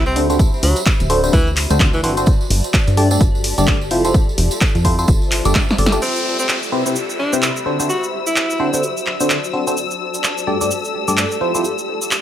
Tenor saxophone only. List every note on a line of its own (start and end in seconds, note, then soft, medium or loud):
0.06 0.19 C4 medium
0.63 0.79 F#3 medium
1.33 1.49 E3 medium
1.93 2.00 E3 medium
2.03 2.12 E3 medium
6.02 6.36 C4 medium
6.39 6.45 C4 medium
6.49 6.58 C4 medium
7.19 7.35 D4 medium
7.89 8.05 F#4 medium
8.27 8.73 E4 medium